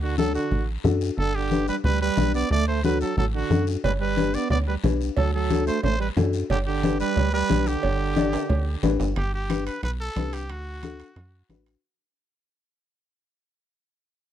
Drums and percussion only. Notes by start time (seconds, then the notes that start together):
0.18 high conga, short guiro
0.35 short guiro
0.51 high conga, low conga, long guiro
0.85 high conga, low conga, short guiro
1.01 short guiro
1.18 high conga, long guiro
1.51 high conga, short guiro
1.68 short guiro
1.84 high conga, low conga, long guiro
2.17 high conga, low conga, short guiro
2.34 short guiro
2.51 high conga, long guiro
2.84 high conga, short guiro
3.01 short guiro
3.18 high conga, low conga, long guiro
3.51 high conga, short guiro
3.67 short guiro
3.84 cowbell, high conga, low conga, long guiro
4.17 cowbell, high conga, short guiro
4.34 short guiro
4.50 cowbell, high conga, low conga, long guiro
4.84 cowbell, high conga, low conga, short guiro
5.01 short guiro
5.17 cowbell, high conga, low conga, long guiro
5.50 cowbell, high conga, short guiro
5.67 short guiro
5.83 cowbell, high conga, low conga, long guiro
6.17 cowbell, high conga, low conga, low timbale, short guiro
6.33 short guiro
6.50 cowbell, high conga, low conga, long guiro
6.83 cowbell, high conga, short guiro
7.00 short guiro
7.17 cowbell, high conga, low conga, long guiro
7.50 cowbell, high conga, short guiro
7.66 short guiro
7.83 cowbell, high conga, long guiro
8.16 cowbell, high conga, short guiro
8.33 high timbale, short guiro
8.49 cowbell, high conga, low conga, long guiro
8.83 cowbell, high conga, low timbale, short guiro
9.00 low timbale, short guiro
9.16 high conga, high timbale, long guiro
9.50 high conga, high timbale, short guiro
9.67 high timbale, short guiro
9.83 high conga, high timbale, long guiro
10.16 high conga, high timbale, low timbale, short guiro
10.33 high timbale, short guiro
10.50 high conga, high timbale, long guiro
10.83 high conga, high timbale, short guiro
11.00 high timbale, short guiro
11.16 high conga, high timbale, long guiro
11.50 high conga, high timbale, low timbale, short guiro
11.66 high timbale, short guiro